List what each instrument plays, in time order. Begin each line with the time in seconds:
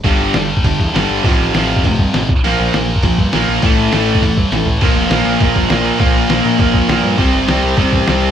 0.04 picked electric bass G1, overdriven electric guitar G2 D3 G3, kick, crash
0.20 picked electric bass G1
0.34 picked electric bass G1, overdriven electric guitar G2 D3, distorted electric guitar G3, snare, open hi-hat
0.57 kick
0.64 picked electric bass G1, overdriven electric guitar G2 D3, distorted electric guitar G3, kick, open hi-hat
0.80 picked electric bass E2, kick
0.94 picked electric bass G1, overdriven electric guitar G2 D3 G3, snare, open hi-hat
1.10 picked electric bass G1
1.24 picked electric bass A1, overdriven electric guitar F2 C3 F3, kick, open hi-hat
1.40 picked electric bass A1
1.54 picked electric bass A1, overdriven electric guitar F2 C3 F3, snare, open hi-hat
1.77 kick
1.84 picked electric bass A1, overdriven electric guitar F2 C3, distorted electric guitar F3, kick, open hi-hat
1.99 picked electric bass G2, kick
2.13 picked electric bass A1, overdriven electric guitar F2 C3, distorted electric guitar F3, snare, open hi-hat
2.29 picked electric bass A#1, kick
2.44 picked electric bass A#1, overdriven electric guitar A#2 F3 A#3, open hi-hat
2.59 picked electric bass A#1
2.73 picked electric bass A#1, overdriven electric guitar A#2 F3, distorted electric guitar A#3, snare, open hi-hat
2.96 kick
3.03 picked electric bass A#1, overdriven electric guitar A#2 F3, distorted electric guitar A#3, kick, open hi-hat
3.18 picked electric bass G2, kick
3.32 picked electric bass A#1, overdriven electric guitar A#2 F3 A#3, snare, open hi-hat
3.48 picked electric bass A#1
3.62 picked electric bass A1, overdriven electric guitar A2 E3 A3, kick, open hi-hat
3.77 picked electric bass A1
3.92 picked electric bass A1, overdriven electric guitar A2 E3 A3, snare, open hi-hat
4.15 kick
4.22 picked electric bass A1, overdriven electric guitar A2 E3, distorted electric guitar A3, kick, open hi-hat
4.37 picked electric bass G2, kick
4.51 picked electric bass A1, overdriven electric guitar A2 E3, distorted electric guitar A3, snare, open hi-hat
4.66 picked electric bass A1, floor tom
4.81 picked electric bass A#1, overdriven electric guitar A#2 F3 A#3, kick, crash
4.95 picked electric bass F1, crash
5.10 picked electric bass A#1, overdriven electric guitar A#2 F3 A#3, snare, crash
5.24 picked electric bass A#1, crash
5.40 picked electric bass A#1, overdriven electric guitar A#2 F3 A#3, kick, crash
5.55 picked electric bass G1, kick, crash
5.69 picked electric bass A#1, overdriven electric guitar A#2 F3 A#3, snare, crash
5.85 crash
5.99 picked electric bass A#1, overdriven electric guitar A#2 F3 A#3, kick, crash
6.14 picked electric bass A#1, crash
6.29 picked electric bass A#1, overdriven electric guitar A#2 F3 A#3, snare, crash
6.45 picked electric bass A#2, crash
6.59 picked electric bass A#1, overdriven electric guitar A#2 F3 A#3, kick, crash
6.74 kick, crash
6.89 picked electric bass A#1, overdriven electric guitar A#2 F3 A#3, snare, crash
7.04 picked electric bass G2, crash
7.18 picked electric bass C2, overdriven electric guitar C3 G3 C4, kick, crash
7.33 picked electric bass G1, crash
7.48 picked electric bass C2, overdriven electric guitar C3 G3 C4, snare, crash
7.63 picked electric bass C2, crash
7.77 picked electric bass C2, overdriven electric guitar C3 G3 C4, kick, crash
7.93 picked electric bass A1, kick, crash
8.07 picked electric bass C2, overdriven electric guitar C3 G3 C4, snare, crash
8.22 crash